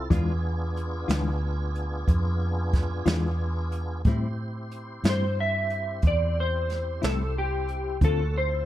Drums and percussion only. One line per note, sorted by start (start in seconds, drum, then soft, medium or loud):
0.11 kick medium
0.11 closed hi-hat medium
0.77 closed hi-hat soft
1.09 snare medium
1.09 closed hi-hat medium
1.75 closed hi-hat soft
2.08 kick medium
2.08 closed hi-hat medium
2.73 kick medium
2.73 snare soft
2.73 closed hi-hat medium
3.06 snare medium
3.06 closed hi-hat medium
3.72 closed hi-hat medium
4.05 kick medium
4.05 closed hi-hat medium
4.71 closed hi-hat soft
5.04 snare medium
5.04 closed hi-hat medium
5.70 closed hi-hat soft
6.02 kick medium
6.02 closed hi-hat medium
6.70 snare soft
6.70 closed hi-hat medium
7.03 snare medium
7.03 closed hi-hat medium
7.68 closed hi-hat soft
8.01 kick medium
8.01 closed hi-hat medium